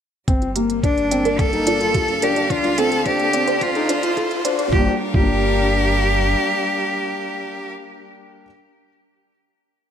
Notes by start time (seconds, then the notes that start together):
0.28 G1 G3 C4, kick, closed hi-hat, riser
0.42 F4, closed hi-hat
0.56 A#3 G4, closed hi-hat
0.67 A#3, closed hi-hat
0.83 D4 A#4, kick, closed hi-hat
0.98 closed hi-hat
1.11 C4 D5, closed hi-hat
1.25 D4 A#4 F5, closed hi-hat
1.39 A4, kick, closed hi-hat
1.53 D#4 G4, closed hi-hat
1.67 D4 F4, closed hi-hat
1.81 F4, closed hi-hat
1.94 G4, kick, closed hi-hat
2.08 closed hi-hat
2.22 D4 G4 A#4, closed hi-hat
2.36 D5, closed hi-hat
2.50 D2 D3 D4 F4, kick, closed hi-hat
2.64 F4, closed hi-hat
2.78 C4 A4, closed hi-hat
2.92 closed hi-hat
3.06 D4 G4 C5, kick, closed hi-hat
3.20 closed hi-hat
3.33 C4 D5, closed hi-hat
3.48 D4 C5, closed hi-hat
3.61 F4, kick, closed hi-hat
3.75 D#4 A4, closed hi-hat
3.89 D4 F4, closed hi-hat
4.03 F4, closed hi-hat
4.17 A4, kick, closed hi-hat
4.31 closed hi-hat
4.45 D4 C5, closed hi-hat
4.59 D5, closed hi-hat
4.72 G1 G3 F4 G4, kick
4.76 A#3
4.80 D4
4.85 G4
4.89 A#4
4.98 F5
5.14 G1 G3 F4 G4, kick
5.18 A#3 D4
5.26 G4